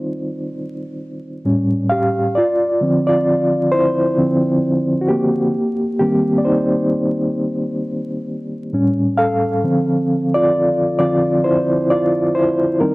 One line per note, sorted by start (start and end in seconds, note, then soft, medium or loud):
0.00 1.41 D#3 soft
0.00 1.41 G3 soft
0.00 1.41 C4 medium
0.00 0.51 D#4 medium
0.00 1.47 F4 medium
0.00 0.50 C5 medium
0.00 1.46 D5 medium
1.45 2.08 A2 medium
1.45 2.08 G3 medium
1.45 2.08 C#4 medium
1.89 2.33 G4 medium
1.89 2.37 F5 loud
2.35 3.04 F4 medium
2.35 3.06 D5 medium
2.81 3.44 D3 medium
2.81 3.44 F3 soft
2.81 3.45 C4 medium
3.07 3.69 F4 medium
3.07 3.74 D5 medium
3.72 4.99 E4 medium
3.72 4.98 C5 loud
4.18 4.59 D3 soft
4.18 4.59 F3 soft
4.18 4.60 C4 medium
5.01 5.08 F#4 medium
5.09 5.97 A#3 medium
5.09 5.98 G4 medium
5.99 7.32 D#3 medium
5.99 7.33 G3 medium
5.99 6.37 A#3 medium
5.99 7.33 C4 medium
5.99 6.40 G4 medium
6.38 6.44 D5 medium
6.45 7.33 D#4 medium
6.45 7.32 C5 medium
8.73 9.59 A2 medium
8.73 9.60 G3 medium
8.73 9.60 C#4 medium
9.18 10.31 A4 medium
9.18 10.38 F5 loud
9.63 10.26 D3 soft
9.63 10.27 F3 soft
9.63 10.27 C4 medium
10.34 10.96 F4 medium
10.34 10.98 D5 medium
10.99 11.41 D3 soft
10.99 11.41 F3 soft
10.99 11.41 C4 medium
10.99 11.42 F4 medium
10.99 11.46 D5 medium
11.44 11.88 E4 medium
11.44 11.91 C5 medium
11.90 12.33 F4 medium
11.90 12.37 D5 medium
12.35 12.78 E4 medium
12.35 12.82 C5 loud
12.80 12.95 D#3 soft
12.80 12.95 G3 soft
12.80 12.95 C4 medium
12.80 12.95 D#4 medium
12.80 12.95 A#4 medium